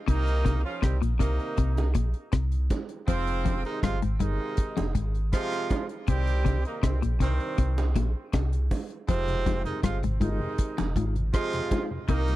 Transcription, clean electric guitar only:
0.08 0.30 C3 medium
0.45 0.57 C3 medium
0.82 0.94 C3 medium
1.02 1.13 A#2 medium
1.19 1.31 C3 medium
1.58 1.81 C3 medium
1.95 2.07 A#2 medium
2.33 2.55 C3 medium
3.08 3.30 F2 medium
3.45 3.57 F2 medium
3.83 3.95 G2 medium
4.02 4.13 G#2 medium
4.21 4.32 G2 medium
4.77 4.88 F2 medium
4.95 5.18 G#2 medium
6.08 6.31 C3 medium
6.45 6.57 C3 medium
6.83 6.95 C3 medium
7.02 7.13 A#2 medium
7.20 7.32 C3 medium
7.58 7.81 C3 medium
7.96 8.08 A#2 medium
8.34 8.56 C3 medium
9.09 9.31 F2 medium
9.47 9.58 F2 medium
9.84 9.95 G2 medium
10.04 10.15 G#2 medium
10.22 10.33 G2 medium
10.78 10.89 F2 medium
10.97 11.19 G#2 medium
12.09 12.31 C3 loud

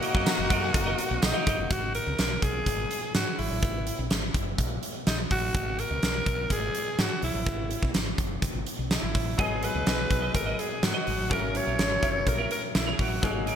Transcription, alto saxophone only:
0.00 1.19 F#4 loud
1.24 1.73 D#4 medium
1.71 1.94 F#4 medium
1.95 2.45 A#4 loud
2.43 3.14 G#4 medium
3.15 3.40 F#4 medium
3.39 4.11 E4 medium
5.07 5.18 D#4 medium
5.32 5.81 F#4 loud
5.80 6.53 A#4 loud
6.52 7.01 G#4 loud
7.00 7.23 F#4 medium
7.24 7.91 E4 medium
8.92 9.42 E4 medium
9.40 9.66 G#4 medium
9.64 10.35 B4 loud
10.35 10.61 A#4 loud
10.60 10.85 G#4 medium
10.84 11.31 F#4 medium
11.32 11.58 A#4 loud
11.56 12.29 C#5 loud
12.28 12.51 A#4 medium
12.52 12.62 A#4 medium
12.75 12.91 E4 medium
12.92 13.01 G#4 medium
13.00 13.44 F#4 medium

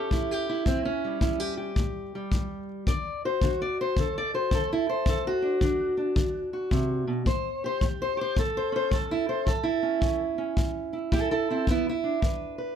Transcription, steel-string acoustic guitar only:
0.00 0.66 C#4 soft
0.00 0.30 G4 medium
0.00 0.12 A4 medium
0.12 0.63 A2 medium
0.12 0.48 E4 medium
0.31 0.67 G4 medium
0.49 1.20 E4 medium
0.67 1.18 A2 medium
0.67 0.85 C4 medium
0.85 1.70 C#4 medium
1.04 2.13 G3 soft
1.21 1.72 A2 medium
1.21 1.40 E4 soft
1.40 1.56 G4 soft
1.57 2.84 G4 soft
1.79 2.29 A2 medium
2.15 2.88 G3 soft
2.34 2.84 A2 medium
2.88 3.39 D3 medium
2.88 3.24 D5 medium
3.25 3.43 F#4 soft
3.25 3.61 C5 medium
3.43 3.94 D3 medium
3.43 3.99 F#4 soft
3.62 3.79 D5 medium
3.81 4.16 C5 medium
3.98 4.49 D3 medium
3.98 4.34 A4 medium
4.18 4.34 D5 medium
4.34 4.53 F#4 soft
4.34 4.71 C5 medium
4.52 5.03 D3 medium
4.52 5.08 A4 medium
4.73 4.89 E4 medium
4.89 5.62 C5 medium
5.07 5.58 D3 medium
5.07 5.26 A4 medium
5.27 6.52 F#4 medium
5.42 5.61 D4 soft
5.62 6.13 D3 medium
5.62 5.96 D4 soft
5.97 7.25 D4 soft
6.16 6.68 D3 medium
6.53 7.25 F#4 soft
6.71 7.07 C3 medium
7.07 7.26 B2 medium
7.26 7.78 A2 medium
7.26 7.64 C5 medium
7.64 7.83 G4 soft
7.64 7.83 C5 medium
7.82 8.33 A2 medium
7.82 8.17 G4 soft
8.02 8.20 C5 medium
8.17 8.39 G4 soft
8.21 8.38 C5 medium
8.37 8.88 A2 medium
8.37 8.92 A4 medium
8.57 8.75 C5 medium
8.72 9.45 C#4 soft
8.72 8.93 C5 medium
8.91 9.43 A2 medium
8.91 9.46 A4 medium
9.11 9.28 E4 medium
9.29 9.47 C5 medium
9.46 9.98 A2 medium
9.46 10.21 A4 medium
9.63 10.92 E4 medium
9.83 10.01 C#4 soft
10.01 10.53 A2 medium
10.01 10.37 C#4 soft
10.38 11.49 C#4 soft
10.58 11.09 A2 medium
10.93 11.11 E4 soft
11.12 11.64 A2 medium
11.12 11.31 E4 medium
11.12 11.30 A4 medium
11.31 11.50 E4 medium
11.31 11.68 A4 medium
11.50 11.68 C4 medium
11.50 11.69 E4 medium
11.69 12.19 E2 medium
11.69 11.87 B3 medium
11.69 11.88 E4 medium
11.89 12.23 E4 medium
12.04 12.75 D4 soft
12.22 12.73 E2 medium
12.22 12.57 B4 soft
12.58 12.75 B4 soft

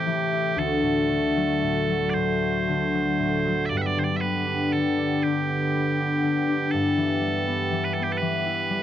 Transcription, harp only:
0.00 0.62 A2 medium
0.00 2.56 C4 medium
0.00 0.32 E4 soft
0.07 0.62 E3 medium
0.33 2.94 E4 medium
0.56 3.75 D2 medium
0.82 1.14 A2 medium
1.09 1.67 D3 soft
1.36 1.87 F#3 soft
1.62 2.14 A2 soft
1.88 2.72 F#3 medium
2.16 2.72 A2 medium
2.42 3.76 F#4 soft
2.68 3.23 D3 soft
2.95 3.44 F#3 soft
3.19 3.75 A2 soft
3.45 3.75 F#3 medium
3.70 6.72 G2 medium
3.97 4.72 D3 soft
4.22 5.74 B3 soft
4.47 4.98 D4 soft
4.73 5.24 D3 soft
4.98 5.49 D4 soft
5.25 6.22 D3 medium
5.50 5.99 D4 soft
5.75 7.46 B3 medium
6.00 6.48 D4 soft
6.23 6.78 D3 soft
6.48 8.83 D4 medium
6.74 8.83 G2 medium
6.97 7.70 E3 soft
7.21 8.69 G3 soft
7.46 7.98 B3 medium
7.71 8.20 E3 soft
7.98 8.83 B3 medium
8.22 8.83 E3 medium
8.46 8.83 E4 soft
8.70 8.83 G3 medium

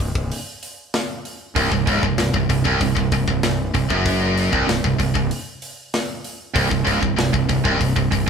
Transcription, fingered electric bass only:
0.00 0.14 C1 medium
0.15 0.30 C1 medium
1.56 1.70 C1 medium
1.72 1.86 C1 medium
1.87 2.02 C#1 medium
2.03 2.17 C1 medium
2.17 2.32 C1 medium
2.34 2.48 C1 medium
2.50 2.64 C1 medium
2.66 2.80 C1 medium
2.80 2.95 C1 medium
2.96 3.11 C1 medium
3.12 3.26 C1 medium
3.28 3.42 C1 medium
3.43 3.72 C1 medium
3.74 3.89 C1 medium
3.89 4.48 F#1 loud
4.53 4.67 C1 medium
4.68 4.83 C1 medium
4.84 4.99 C1 medium
4.99 5.14 C1 medium
5.15 5.30 C1 medium
6.55 6.70 C1 medium
6.71 6.86 C1 medium
6.87 7.02 C#1 medium
7.02 7.17 C1 medium
7.17 7.32 C1 medium
7.33 7.48 C1 medium
7.50 7.64 C1 medium
7.65 7.80 C1 loud
7.81 7.95 C1 medium
7.96 8.11 C1 medium
8.12 8.26 C1 medium

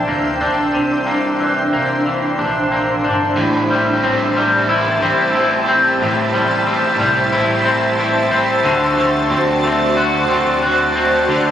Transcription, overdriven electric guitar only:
3.36 3.70 A2 medium
3.36 3.70 E3 medium
3.36 3.70 G3 medium
3.36 3.71 C4 medium
3.36 3.67 E4 medium
3.69 4.03 C4 medium
3.69 4.02 E4 medium
3.74 4.03 G3 soft
4.02 4.35 A2 loud
4.02 4.36 E3 loud
4.02 4.36 G3 loud
4.02 4.36 C4 loud
4.02 4.33 E4 medium
4.34 4.69 C4 medium
4.34 4.68 E4 medium
4.39 4.68 G3 medium
4.67 5.01 E3 medium
4.67 5.02 G3 medium
4.67 5.02 C4 medium
4.72 4.99 E4 medium
5.00 5.35 C4 medium
5.00 5.34 E4 medium
5.05 5.34 G3 soft
5.34 5.67 A2 medium
5.34 5.68 E3 medium
5.34 5.68 G3 loud
5.34 5.67 C4 medium
5.34 5.65 E4 loud
5.66 6.01 C4 medium
5.66 6.00 E4 medium
5.71 6.00 G3 soft
6.00 6.33 A2 medium
6.00 6.34 E3 medium
6.00 6.34 G3 medium
6.00 6.34 C4 medium
6.00 6.31 E4 loud
6.33 6.67 C4 medium
6.33 6.66 E4 medium
6.37 6.66 G3 soft
6.65 6.99 A2 medium
6.65 7.00 E3 medium
6.65 7.00 G3 medium
6.65 6.99 C4 loud
6.65 6.97 E4 loud
6.98 7.33 C4 medium
6.98 7.32 E4 medium
7.03 7.32 G3 soft
7.31 7.65 E3 medium
7.31 7.66 G3 medium
7.31 7.66 C4 medium
7.36 7.63 E4 medium
7.64 7.99 C4 medium
7.64 7.98 E4 medium
7.69 7.98 G3 medium
7.98 8.31 A2 medium
7.98 8.32 E3 loud
7.98 8.32 G3 medium
7.98 8.32 C4 medium
7.98 8.29 E4 loud
8.31 8.65 C4 medium
8.31 8.64 E4 medium
8.35 8.65 G3 soft
8.64 8.97 D3 medium
8.64 8.98 A3 medium
8.64 8.97 C4 medium
8.64 8.94 F#4 medium
8.96 9.31 C4 medium
8.96 9.30 F#4 medium
9.01 9.30 A3 soft
9.29 9.63 D3 loud
9.29 9.64 A3 medium
9.29 9.63 C4 loud
9.29 9.61 F#4 loud
9.62 9.97 C4 medium
9.62 9.96 F#4 medium
9.67 9.95 A3 soft
9.95 10.29 D3 medium
9.95 10.30 A3 medium
9.95 10.30 C4 medium
10.00 10.27 F#4 medium
10.28 10.63 C4 medium
10.28 10.62 F#4 medium
10.33 10.62 A3 medium
10.62 10.95 D3 medium
10.62 10.96 A3 loud
10.62 10.95 C4 medium
10.62 10.93 F#4 medium
10.94 11.29 C4 soft
10.94 11.28 F#4 medium
10.99 11.28 A3 soft
11.28 11.51 D3 medium
11.28 11.51 A3 medium
11.28 11.51 C4 medium
11.28 11.51 F#4 medium

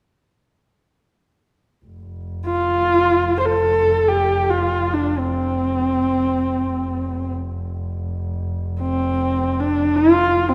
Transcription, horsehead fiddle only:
2.46 3.35 F4 medium
3.39 3.47 C5 medium
3.46 4.10 A4 medium
4.08 4.51 G4 medium
4.50 4.95 F4 medium
4.93 5.19 D4 medium
5.18 7.34 C4 medium
8.81 9.61 C4 medium
9.60 9.97 D4 medium
9.96 10.50 F4 medium
10.49 10.54 C4 medium

